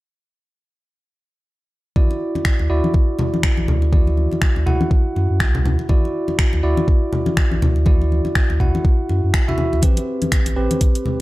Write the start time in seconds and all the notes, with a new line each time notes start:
1.96 E4 F#4 D5, kick, high conga
2.11 muted conga
2.35 muted conga, high conga
2.45 finger snap, kick
2.59 D2, muted conga
2.70 D2 E4 F#4 D5
2.84 high conga
2.94 kick, muted conga
3.19 muted conga, low conga
3.34 high conga
3.43 finger snap, kick, muted conga
3.57 A1, high conga
3.68 D2, low conga
3.82 muted conga
3.93 E4 F#4 D5, kick, high conga
4.07 muted conga
4.17 high conga
4.31 muted conga, high conga
4.42 finger snap, kick
4.56 D2, muted conga
4.66 D2 E4 F#4 F#5, low conga
4.81 high conga
4.91 kick, muted conga
5.16 F#2, muted conga
5.30 F#2
5.40 C2, finger snap, kick, muted conga
5.55 low conga
5.65 D2, low conga
5.79 muted conga
5.89 E4 F#4 D5, kick, high conga
6.05 muted conga
6.28 muted conga, high conga
6.39 finger snap, kick
6.53 D2, muted conga
6.63 D2 E4 F#4 D5
6.77 high conga
6.88 kick, muted conga
7.13 muted conga, low conga
7.26 high conga
7.37 finger snap, kick, muted conga
7.52 A1, high conga
7.62 D2, low conga
7.76 muted conga
7.86 E4 F#4 D5, kick, high conga
8.02 muted conga
8.12 high conga
8.25 muted conga, high conga
8.35 finger snap, kick
8.50 D2, muted conga
8.60 D2 E4 F#4 F#5, kick, low conga
8.75 high conga
8.85 kick, muted conga
9.09 F#2, muted conga
9.24 F#2
9.34 finger snap, kick, muted conga
9.48 E4 F#4 E5, low conga
9.58 high conga, low conga
9.73 D2, muted conga
9.82 C4 G4 B4, kick, closed hi-hat, high conga
9.97 closed hi-hat, muted conga
10.22 closed hi-hat, muted conga, high conga
10.32 finger snap, kick, closed hi-hat
10.46 A1, closed hi-hat, muted conga
10.56 A1 C4 G4 B4
10.71 closed hi-hat, high conga
10.81 kick, closed hi-hat
10.95 closed hi-hat
11.06 muted conga, low conga